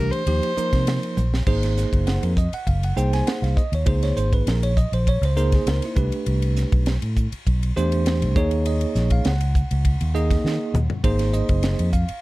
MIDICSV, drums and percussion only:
0, 0, Header, 1, 2, 480
1, 0, Start_track
1, 0, Tempo, 598205
1, 1180, Time_signature, 4, 2, 24, 8
1, 9801, End_track
2, 0, Start_track
2, 0, Title_t, "Drums"
2, 101, Note_on_c, 9, 51, 55
2, 181, Note_off_c, 9, 51, 0
2, 214, Note_on_c, 9, 51, 72
2, 295, Note_off_c, 9, 51, 0
2, 345, Note_on_c, 9, 51, 55
2, 425, Note_off_c, 9, 51, 0
2, 460, Note_on_c, 9, 44, 75
2, 541, Note_off_c, 9, 44, 0
2, 584, Note_on_c, 9, 36, 72
2, 585, Note_on_c, 9, 51, 62
2, 593, Note_on_c, 9, 38, 30
2, 664, Note_off_c, 9, 36, 0
2, 665, Note_off_c, 9, 51, 0
2, 673, Note_off_c, 9, 38, 0
2, 699, Note_on_c, 9, 51, 76
2, 707, Note_on_c, 9, 38, 93
2, 779, Note_off_c, 9, 51, 0
2, 787, Note_off_c, 9, 38, 0
2, 827, Note_on_c, 9, 51, 52
2, 907, Note_off_c, 9, 51, 0
2, 940, Note_on_c, 9, 44, 79
2, 940, Note_on_c, 9, 48, 48
2, 1020, Note_off_c, 9, 44, 0
2, 1020, Note_off_c, 9, 48, 0
2, 1073, Note_on_c, 9, 38, 65
2, 1153, Note_off_c, 9, 38, 0
2, 1178, Note_on_c, 9, 36, 95
2, 1179, Note_on_c, 9, 49, 88
2, 1258, Note_off_c, 9, 36, 0
2, 1259, Note_off_c, 9, 49, 0
2, 1307, Note_on_c, 9, 51, 63
2, 1315, Note_on_c, 9, 38, 32
2, 1388, Note_off_c, 9, 51, 0
2, 1396, Note_off_c, 9, 38, 0
2, 1423, Note_on_c, 9, 44, 80
2, 1431, Note_on_c, 9, 38, 30
2, 1503, Note_off_c, 9, 44, 0
2, 1511, Note_off_c, 9, 38, 0
2, 1546, Note_on_c, 9, 36, 73
2, 1550, Note_on_c, 9, 51, 55
2, 1627, Note_off_c, 9, 36, 0
2, 1631, Note_off_c, 9, 51, 0
2, 1660, Note_on_c, 9, 51, 66
2, 1668, Note_on_c, 9, 38, 89
2, 1740, Note_off_c, 9, 51, 0
2, 1749, Note_off_c, 9, 38, 0
2, 1788, Note_on_c, 9, 51, 56
2, 1869, Note_off_c, 9, 51, 0
2, 1901, Note_on_c, 9, 36, 75
2, 1902, Note_on_c, 9, 44, 78
2, 1981, Note_off_c, 9, 36, 0
2, 1983, Note_off_c, 9, 44, 0
2, 2029, Note_on_c, 9, 51, 58
2, 2110, Note_off_c, 9, 51, 0
2, 2142, Note_on_c, 9, 36, 55
2, 2144, Note_on_c, 9, 51, 64
2, 2222, Note_off_c, 9, 36, 0
2, 2224, Note_off_c, 9, 51, 0
2, 2273, Note_on_c, 9, 51, 56
2, 2353, Note_off_c, 9, 51, 0
2, 2385, Note_on_c, 9, 44, 89
2, 2465, Note_off_c, 9, 44, 0
2, 2513, Note_on_c, 9, 51, 56
2, 2521, Note_on_c, 9, 38, 30
2, 2593, Note_off_c, 9, 51, 0
2, 2601, Note_off_c, 9, 38, 0
2, 2625, Note_on_c, 9, 51, 72
2, 2633, Note_on_c, 9, 38, 106
2, 2705, Note_off_c, 9, 51, 0
2, 2713, Note_off_c, 9, 38, 0
2, 2759, Note_on_c, 9, 51, 47
2, 2767, Note_on_c, 9, 38, 25
2, 2839, Note_off_c, 9, 51, 0
2, 2847, Note_off_c, 9, 38, 0
2, 2865, Note_on_c, 9, 36, 79
2, 2870, Note_on_c, 9, 44, 72
2, 2945, Note_off_c, 9, 36, 0
2, 2951, Note_off_c, 9, 44, 0
2, 2991, Note_on_c, 9, 51, 52
2, 3071, Note_off_c, 9, 51, 0
2, 3099, Note_on_c, 9, 51, 75
2, 3103, Note_on_c, 9, 36, 106
2, 3180, Note_off_c, 9, 51, 0
2, 3184, Note_off_c, 9, 36, 0
2, 3230, Note_on_c, 9, 51, 55
2, 3238, Note_on_c, 9, 38, 29
2, 3311, Note_off_c, 9, 51, 0
2, 3319, Note_off_c, 9, 38, 0
2, 3344, Note_on_c, 9, 44, 77
2, 3424, Note_off_c, 9, 44, 0
2, 3472, Note_on_c, 9, 36, 79
2, 3472, Note_on_c, 9, 51, 52
2, 3552, Note_off_c, 9, 36, 0
2, 3553, Note_off_c, 9, 51, 0
2, 3587, Note_on_c, 9, 51, 73
2, 3595, Note_on_c, 9, 38, 90
2, 3667, Note_off_c, 9, 51, 0
2, 3675, Note_off_c, 9, 38, 0
2, 3715, Note_on_c, 9, 51, 63
2, 3795, Note_off_c, 9, 51, 0
2, 3827, Note_on_c, 9, 36, 73
2, 3827, Note_on_c, 9, 44, 81
2, 3907, Note_off_c, 9, 36, 0
2, 3907, Note_off_c, 9, 44, 0
2, 3956, Note_on_c, 9, 51, 57
2, 4036, Note_off_c, 9, 51, 0
2, 4068, Note_on_c, 9, 36, 64
2, 4071, Note_on_c, 9, 51, 74
2, 4148, Note_off_c, 9, 36, 0
2, 4151, Note_off_c, 9, 51, 0
2, 4197, Note_on_c, 9, 51, 62
2, 4277, Note_off_c, 9, 51, 0
2, 4305, Note_on_c, 9, 44, 83
2, 4385, Note_off_c, 9, 44, 0
2, 4431, Note_on_c, 9, 51, 62
2, 4434, Note_on_c, 9, 36, 74
2, 4439, Note_on_c, 9, 38, 29
2, 4511, Note_off_c, 9, 51, 0
2, 4514, Note_off_c, 9, 36, 0
2, 4519, Note_off_c, 9, 38, 0
2, 4548, Note_on_c, 9, 51, 88
2, 4556, Note_on_c, 9, 38, 101
2, 4628, Note_off_c, 9, 51, 0
2, 4636, Note_off_c, 9, 38, 0
2, 4672, Note_on_c, 9, 51, 60
2, 4680, Note_on_c, 9, 38, 28
2, 4752, Note_off_c, 9, 51, 0
2, 4760, Note_off_c, 9, 38, 0
2, 4784, Note_on_c, 9, 44, 84
2, 4787, Note_on_c, 9, 36, 96
2, 4864, Note_off_c, 9, 44, 0
2, 4867, Note_off_c, 9, 36, 0
2, 4912, Note_on_c, 9, 51, 60
2, 4992, Note_off_c, 9, 51, 0
2, 5026, Note_on_c, 9, 51, 80
2, 5106, Note_off_c, 9, 51, 0
2, 5153, Note_on_c, 9, 51, 58
2, 5233, Note_off_c, 9, 51, 0
2, 5268, Note_on_c, 9, 44, 76
2, 5276, Note_on_c, 9, 38, 29
2, 5349, Note_off_c, 9, 44, 0
2, 5357, Note_off_c, 9, 38, 0
2, 5394, Note_on_c, 9, 51, 58
2, 5396, Note_on_c, 9, 36, 86
2, 5474, Note_off_c, 9, 51, 0
2, 5476, Note_off_c, 9, 36, 0
2, 5504, Note_on_c, 9, 51, 72
2, 5512, Note_on_c, 9, 38, 91
2, 5585, Note_off_c, 9, 51, 0
2, 5593, Note_off_c, 9, 38, 0
2, 5633, Note_on_c, 9, 51, 61
2, 5713, Note_off_c, 9, 51, 0
2, 5749, Note_on_c, 9, 44, 82
2, 5750, Note_on_c, 9, 36, 67
2, 5830, Note_off_c, 9, 36, 0
2, 5830, Note_off_c, 9, 44, 0
2, 5876, Note_on_c, 9, 51, 52
2, 5956, Note_off_c, 9, 51, 0
2, 5991, Note_on_c, 9, 36, 57
2, 5993, Note_on_c, 9, 51, 64
2, 6071, Note_off_c, 9, 36, 0
2, 6073, Note_off_c, 9, 51, 0
2, 6121, Note_on_c, 9, 51, 61
2, 6201, Note_off_c, 9, 51, 0
2, 6233, Note_on_c, 9, 44, 80
2, 6313, Note_off_c, 9, 44, 0
2, 6354, Note_on_c, 9, 51, 55
2, 6435, Note_off_c, 9, 51, 0
2, 6467, Note_on_c, 9, 51, 76
2, 6475, Note_on_c, 9, 38, 105
2, 6547, Note_off_c, 9, 51, 0
2, 6555, Note_off_c, 9, 38, 0
2, 6596, Note_on_c, 9, 51, 55
2, 6676, Note_off_c, 9, 51, 0
2, 6707, Note_on_c, 9, 44, 81
2, 6708, Note_on_c, 9, 36, 102
2, 6787, Note_off_c, 9, 44, 0
2, 6788, Note_off_c, 9, 36, 0
2, 6829, Note_on_c, 9, 51, 51
2, 6909, Note_off_c, 9, 51, 0
2, 6946, Note_on_c, 9, 51, 80
2, 7026, Note_off_c, 9, 51, 0
2, 7068, Note_on_c, 9, 51, 56
2, 7149, Note_off_c, 9, 51, 0
2, 7184, Note_on_c, 9, 44, 74
2, 7192, Note_on_c, 9, 38, 30
2, 7264, Note_off_c, 9, 44, 0
2, 7272, Note_off_c, 9, 38, 0
2, 7305, Note_on_c, 9, 51, 55
2, 7309, Note_on_c, 9, 36, 78
2, 7385, Note_off_c, 9, 51, 0
2, 7389, Note_off_c, 9, 36, 0
2, 7419, Note_on_c, 9, 51, 67
2, 7427, Note_on_c, 9, 38, 88
2, 7499, Note_off_c, 9, 51, 0
2, 7507, Note_off_c, 9, 38, 0
2, 7547, Note_on_c, 9, 51, 64
2, 7628, Note_off_c, 9, 51, 0
2, 7662, Note_on_c, 9, 44, 81
2, 7664, Note_on_c, 9, 36, 73
2, 7742, Note_off_c, 9, 44, 0
2, 7744, Note_off_c, 9, 36, 0
2, 7790, Note_on_c, 9, 51, 58
2, 7870, Note_off_c, 9, 51, 0
2, 7902, Note_on_c, 9, 36, 60
2, 7903, Note_on_c, 9, 51, 71
2, 7982, Note_off_c, 9, 36, 0
2, 7983, Note_off_c, 9, 51, 0
2, 8029, Note_on_c, 9, 51, 62
2, 8109, Note_off_c, 9, 51, 0
2, 8146, Note_on_c, 9, 44, 82
2, 8226, Note_off_c, 9, 44, 0
2, 8269, Note_on_c, 9, 36, 76
2, 8272, Note_on_c, 9, 51, 67
2, 8280, Note_on_c, 9, 38, 35
2, 8349, Note_off_c, 9, 36, 0
2, 8352, Note_off_c, 9, 51, 0
2, 8360, Note_off_c, 9, 38, 0
2, 8395, Note_on_c, 9, 38, 59
2, 8475, Note_off_c, 9, 38, 0
2, 8623, Note_on_c, 9, 44, 74
2, 8623, Note_on_c, 9, 45, 77
2, 8703, Note_off_c, 9, 44, 0
2, 8703, Note_off_c, 9, 45, 0
2, 8745, Note_on_c, 9, 43, 71
2, 8826, Note_off_c, 9, 43, 0
2, 8859, Note_on_c, 9, 36, 112
2, 8859, Note_on_c, 9, 51, 90
2, 8939, Note_off_c, 9, 36, 0
2, 8939, Note_off_c, 9, 51, 0
2, 8980, Note_on_c, 9, 51, 62
2, 8988, Note_on_c, 9, 38, 30
2, 9060, Note_off_c, 9, 51, 0
2, 9068, Note_off_c, 9, 38, 0
2, 9093, Note_on_c, 9, 44, 77
2, 9173, Note_off_c, 9, 44, 0
2, 9218, Note_on_c, 9, 51, 57
2, 9222, Note_on_c, 9, 36, 79
2, 9299, Note_off_c, 9, 51, 0
2, 9302, Note_off_c, 9, 36, 0
2, 9330, Note_on_c, 9, 51, 72
2, 9338, Note_on_c, 9, 38, 98
2, 9410, Note_off_c, 9, 51, 0
2, 9418, Note_off_c, 9, 38, 0
2, 9460, Note_on_c, 9, 51, 62
2, 9540, Note_off_c, 9, 51, 0
2, 9571, Note_on_c, 9, 44, 82
2, 9574, Note_on_c, 9, 36, 66
2, 9651, Note_off_c, 9, 44, 0
2, 9654, Note_off_c, 9, 36, 0
2, 9697, Note_on_c, 9, 51, 57
2, 9777, Note_off_c, 9, 51, 0
2, 9801, End_track
0, 0, End_of_file